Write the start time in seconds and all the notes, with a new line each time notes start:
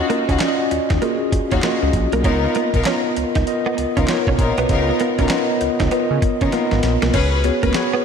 Already playing: C#4 F4 F#4 D#5
0.10 A#3, closed hi-hat
0.29 C#2 C#4 D#4 F4 F#4, kick, closed hi-hat
0.40 C#4 F4 F#4 D5, snare, clap, closed hi-hat
0.48 D#5
0.71 D#2, muted clean electric guitar stroke, closed hi-hat
0.90 D#2 D#4, kick, snare, closed hi-hat
1.01 A#3 C#4 F4 F#4 G#4, closed hi-hat
1.32 D#2, muted clean electric guitar stroke, kick, closed hi-hat
1.51 D#2 C#4 D#4 F4 F#4, kick, closed hi-hat
1.62 A#3 C#4 F4 F#4 D#5, snare, clap, closed hi-hat
1.83 C#2, muted clean electric guitar stroke
1.93 A#1, kick, closed hi-hat
2.12 B1 A#3, closed hi-hat
2.24 C#2 B3 C#4 D#4 F4 A#4 D#5, kick, closed hi-hat
2.44 muted clean electric guitar stroke
2.55 A#3, closed hi-hat
2.74 B1 B3 D#4 F4 A#4, kick, closed hi-hat
2.85 B3 C#4 F4 A#4 D#5, snare, clap, closed hi-hat
3.17 C#2, muted clean electric guitar stroke, closed hi-hat
3.35 C#2 D#4, kick, snare, closed hi-hat
3.46 B3 F4 A#4 D#5, closed hi-hat
3.66 B3
3.77 C#2, muted clean electric guitar stroke, closed hi-hat
3.96 C#2 B3 C#4 D#4 F4 A#4, kick, closed hi-hat
4.08 B3 F4 A#4 C#5, snare, clap, closed hi-hat
4.27 B1 C#4, kick
4.38 A#1 B3 D#4 F4 A#4, muted clean electric guitar stroke, kick, closed hi-hat
4.58 B1 B3, closed hi-hat
4.69 C#2 B3 D#4 F4 A#4 D#5, kick, closed hi-hat
4.89 muted clean electric guitar stroke
5.00 B3, closed hi-hat
5.19 B1 B3 C#4 D#4 F4 A#4, kick, closed hi-hat
5.29 B3 C#4 F4 A#4 D#5, snare, clap, closed hi-hat
5.61 C#2, muted clean electric guitar stroke, closed hi-hat
5.80 C#2 D#4, kick, snare, closed hi-hat
5.91 B3 F4 A#4 D#5, closed hi-hat
6.11 C#3
6.22 muted clean electric guitar stroke, kick, closed hi-hat
6.41 C#3 B3 C#4 D#4 F4 A#4, kick, closed hi-hat
6.52 A#3 B3 F4 A#4 D#5, snare, closed hi-hat
6.71 G#1, muted clean electric guitar stroke, snare
6.83 A#1, snare, closed hi-hat
7.02 B1 A#3, snare, closed hi-hat
7.14 C#2 C#4 F#4 G#4 B4, kick, closed hi-hat, crash
7.44 B3 F#4 G#4 C#5, muted clean electric guitar stroke, closed hi-hat
7.63 C#2 A#3 C#4 F#4 G#4 B4, kick, closed hi-hat
7.74 B3 F#4 G#4 C#5, muted clean electric guitar stroke, snare, clap, closed hi-hat
7.93 B3